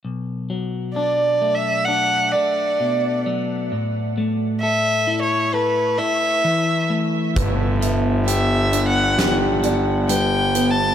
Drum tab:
HH |--------|--------|xxxxxxxx|
SD |--------|--------|----o---|
BD |--------|--------|o-------|